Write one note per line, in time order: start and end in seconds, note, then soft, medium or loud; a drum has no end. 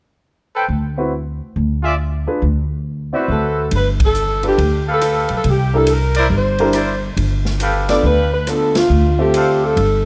0.54 0.64 A4 medium
0.54 0.64 B4 medium
0.54 0.64 C5 medium
0.54 0.64 G5 medium
0.68 1.39 D2 medium
0.97 1.10 C4 medium
0.97 1.11 E4 soft
0.97 1.11 F#4 soft
0.97 1.11 B4 medium
1.56 2.26 D2 medium
1.83 1.93 F4 medium
1.83 1.93 G#4 medium
1.83 1.93 D5 medium
1.83 1.93 E5 medium
2.27 2.40 D4 medium
2.27 2.40 F4 soft
2.27 2.41 G#4 medium
2.27 2.41 B4 medium
2.42 3.12 D2 medium
3.13 3.26 C4 medium
3.13 3.26 E4 medium
3.13 3.68 F#4 medium
3.13 3.27 F#4 soft
3.13 3.68 B4 medium
3.13 3.68 C5 medium
3.13 3.27 D5 medium
3.13 3.68 E5 medium
3.28 3.68 D2 medium
3.28 3.70 A4 medium
3.71 4.54 G1 medium
3.71 kick soft
3.71 ride medium
3.75 3.87 B4 medium
4.00 kick medium
4.00 ride medium
4.05 4.43 A4 medium
4.15 hi-hat pedal medium
4.43 4.57 D4 medium
4.43 4.56 F4 soft
4.43 4.57 A4 medium
4.43 4.57 B4 medium
4.43 ride soft
4.48 4.86 G4 medium
4.58 5.25 D2 medium
4.58 kick soft
4.58 ride soft
4.86 5.42 G4 medium
4.86 5.41 A4 medium
4.86 5.42 B4 medium
4.86 5.42 F5 medium
4.93 5.30 A4 medium
5.01 cross-stick medium
5.01 hi-hat pedal soft
5.01 ride medium
5.29 5.44 B1 medium
5.29 ride soft
5.36 5.47 A4 medium
5.44 6.27 C2 medium
5.44 kick soft
5.44 ride soft
5.50 5.76 G4 medium
5.74 5.87 D4 medium
5.74 5.87 E4 medium
5.74 5.87 G4 medium
5.74 5.90 A4 medium
5.74 5.87 A#4 medium
5.87 hi-hat pedal medium
5.87 ride medium
5.92 6.28 A#4 medium
6.15 6.26 E4 medium
6.15 6.26 A#4 medium
6.15 6.26 C5 medium
6.15 6.26 D5 medium
6.15 ride medium
6.29 7.13 G1 medium
6.29 6.32 A#4 medium
6.29 kick soft
6.37 7.06 C5 loud
6.59 6.73 D4 medium
6.59 6.73 E4 medium
6.59 6.73 G4 medium
6.59 6.73 A#4 medium
6.59 ride soft
6.73 6.93 E4 medium
6.73 6.93 A#4 medium
6.73 6.93 C5 medium
6.73 6.93 D5 medium
6.73 cross-stick medium
6.73 hi-hat pedal medium
6.73 ride medium
7.17 8.00 G1 medium
7.17 kick soft
7.17 ride medium
7.45 snare soft
7.60 8.27 G4 medium
7.60 8.27 A4 medium
7.60 8.27 B4 medium
7.60 8.27 F5 medium
7.60 hi-hat pedal medium
7.60 ride medium
7.89 8.02 B3 medium
7.89 8.03 D4 medium
7.89 8.03 F4 medium
7.89 8.03 A4 medium
7.89 8.03 D5 medium
7.89 snare soft
7.89 ride medium
8.03 8.86 D2 medium
8.03 8.31 B4 loud
8.03 kick soft
8.32 8.46 B4 medium
8.47 8.73 B3 medium
8.47 8.74 D4 soft
8.47 8.74 F4 soft
8.47 8.77 A4 medium
8.47 8.74 B4 medium
8.47 cross-stick medium
8.47 hi-hat pedal medium
8.47 ride medium
8.75 9.17 F4 medium
8.75 snare medium
8.75 ride medium
8.90 9.73 D2 medium
9.18 9.74 C4 medium
9.18 9.74 F4 medium
9.18 9.63 G4 medium
9.18 9.74 A4 medium
9.18 9.74 E5 medium
9.34 9.78 A4 medium
9.34 9.78 C5 medium
9.34 9.77 D5 medium
9.34 9.78 F5 medium
9.34 hi-hat pedal medium
9.34 ride medium
9.64 10.05 A4 medium
9.76 10.05 G1 medium
9.76 kick soft
9.76 ride medium